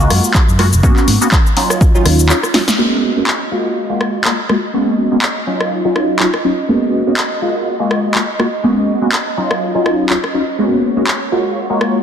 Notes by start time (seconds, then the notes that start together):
0.00 G#3 A#3 F4 F#4, shaker
0.10 F#2, cross-stick, open hi-hat, shaker
0.24 shaker
0.34 G#3 A#3 F4 F#4, kick, clap, shaker
0.49 F#2, shaker
0.59 G#3 A#3 F4 F#4, cross-stick, open hi-hat, shaker
0.73 F#1, shaker
0.83 A#3 B3 C#4 F#4, kick, shaker
0.97 clap, shaker
1.08 G#2, open hi-hat, shaker
1.21 A#3 B3 C#4 F#4, shaker
1.32 kick, clap, shaker
1.46 shaker
1.56 F#3 C#4 D#4 F4, open hi-hat, shaker
1.70 cross-stick, shaker
1.81 kick, shaker
1.94 F#3 C#4 D#4 F4, muted fingered electric bass stroke, shaker
2.05 D#2, cross-stick, open hi-hat, shaker
2.19 shaker
2.29 F#3 C#4 D#4 F4, clap, shaker
2.43 cross-stick, shaker
2.54 F#3 C#4 D#4 F4, snare, open hi-hat, shaker
2.67 snare, shaker
2.78 G#3 A#3 B3 C#4 F#4 D#5
3.16 G#3 A#3 B3 C#4 F#4
3.27 clap
3.51 G#3 A#3 F4 F#4
3.89 G#3 A#3 F4 F#4
4.01 cross-stick
4.25 G#3 A#3 F4 F#4, clap
4.49 G#3 A#3 F4 F#4, cross-stick
4.73 G#3 A#3 B3 C#4 F#4
5.11 G#3 A#3 B3 C#4 F#4
5.22 clap
5.47 F#3 C#4 D#4 F4
5.61 cross-stick
5.85 F#3 C#4 D#4 F4
5.96 cross-stick
6.20 F#3 C#4 D#4 F4, clap
6.34 cross-stick
6.44 F#3 C#4 D#4 F4
6.69 G#3 A#3 B3 C#4 F#4
7.07 G#3 A#3 B3 C#4 F#4
7.17 clap
7.42 G#3 A#3 F4 F#4
7.80 G#3 A#3 F4 F#4
7.91 cross-stick
8.15 G#3 A#3 F4 F#4, clap
8.39 G#3 A#3 F4 F#4, cross-stick
8.63 G#3 A#3 B3 C#4 F#4
9.01 G#3 A#3 B3 C#4 F#4
9.12 clap
9.37 F#3 C#4 D#4 F4
9.51 cross-stick
9.75 F#3 C#4 D#4 F4
9.86 cross-stick
10.10 F#3 C#4 D#4 F4, clap
10.24 cross-stick
10.34 F#3 C#4 D#4 F4
10.59 G#3 A#3 B3 C#4 F#4 C#5
10.83 shaker
10.96 G#3 A#3 B3 C#4 F#4, shaker
11.07 clap
11.32 G#3 A#3 F4 F#4
11.57 shaker
11.70 G#3 A#3 F4 F#4
11.81 cross-stick